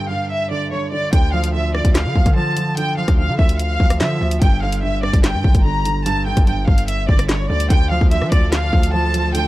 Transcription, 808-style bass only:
1.13 1.82 D2 loud
1.85 2.07 D2 loud
2.05 2.15 D3 loud
2.16 2.25 D2 loud
2.26 3.05 D3 loud
3.08 3.30 D2 loud
3.29 3.38 D3 loud
3.39 3.78 D2 loud
3.80 4.02 D2 loud
4.01 4.20 D3 loud
4.21 4.41 D2 loud
4.42 5.11 G1 loud
5.13 5.36 G1 loud
5.34 5.44 G2 loud
5.44 5.54 A#1 loud
5.55 6.34 G1 loud
6.37 6.66 G1 loud
6.68 7.07 G1 loud
7.09 7.48 G1 loud
7.50 7.70 D2 loud
7.70 8.00 D2 loud
8.01 8.23 D2 loud
8.22 8.31 F3 loud
8.32 8.71 D2 loud
8.73 9.47 D2 loud

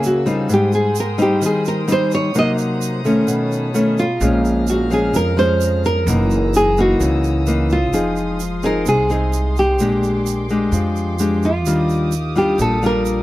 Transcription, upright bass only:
0.00 0.49 C#2 medium
0.49 1.42 G#2 medium
1.42 2.34 D#2 medium
4.21 5.10 A#1 medium
5.14 6.08 F2 medium
6.07 6.96 F#1 loud
7.00 7.92 C#2 medium
7.92 8.82 F1 medium
8.86 9.79 C2 medium
9.79 10.68 A#1 medium
10.72 11.64 F2 medium
11.64 12.54 D#2 medium
12.59 13.23 A#1 medium

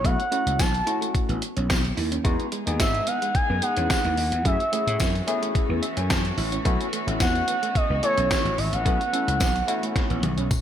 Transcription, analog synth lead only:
0.04 0.61 F#5 loud
0.59 1.15 A5 loud
2.80 3.09 E5 loud
3.07 3.36 F#5 loud
3.35 3.64 G#5 loud
3.63 4.45 F#5 loud
4.46 5.52 E5 loud
7.21 7.78 F#5 loud
7.76 8.03 D#5 loud
8.04 8.60 C#5 loud
8.58 8.74 E5 loud
8.73 10.51 F#5 loud

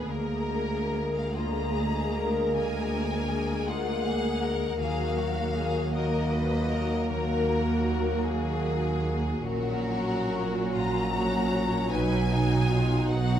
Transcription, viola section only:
0.09 1.35 A#3 soft
0.09 1.33 G#4 soft
1.36 2.52 A#3 soft
1.36 2.52 G#4 soft
2.54 4.76 A#3 medium
2.54 4.76 G#4 soft
4.79 5.92 A#3 soft
4.79 5.92 F#4 soft
5.93 7.07 A#3 medium
5.93 7.07 F#4 soft
7.09 9.39 A#3 medium
7.09 9.39 F#4 medium
9.86 11.11 F#3 soft
9.86 11.11 F#4 medium
11.15 11.90 F#3 medium
11.15 11.92 F#4 soft
11.91 12.30 F#3 medium
11.91 12.30 D#4 medium
12.32 13.39 F#3 medium
12.32 13.39 D#4 medium

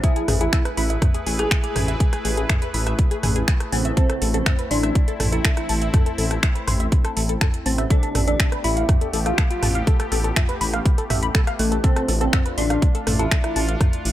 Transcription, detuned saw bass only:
0.28 0.48 A1 loud
0.77 0.97 A1 medium
1.27 1.46 A1 medium
1.76 1.95 A1 medium
2.25 2.45 A1 loud
2.74 2.94 A1 medium
3.23 3.43 A1 medium
3.73 3.92 A1 medium
4.22 4.41 A1 loud
4.71 4.90 A1 medium
5.20 5.40 A1 medium
5.69 5.89 A1 medium
6.18 6.38 A1 loud
6.67 6.87 A1 medium
7.17 7.36 A1 medium
7.66 7.86 A1 medium
8.15 8.35 A1 loud
8.64 8.84 A1 medium
9.13 9.33 A1 medium
9.63 9.82 A1 medium
10.12 10.31 A1 loud
10.61 10.81 A1 medium
11.10 11.30 A1 medium
11.59 11.79 A1 medium
12.09 12.28 A1 loud
12.58 12.77 A1 medium
13.07 13.27 A1 medium
13.56 13.76 A1 medium
14.05 14.12 A1 loud

